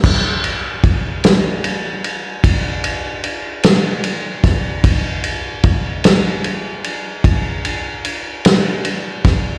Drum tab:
CC |x-----------|------------|
RD |-xxxxxxxxxxx|xxxxxxxxxxxx|
SD |---o-----o-o|---o-----o-o|
BD |o-o---o----o|o-o---o----o|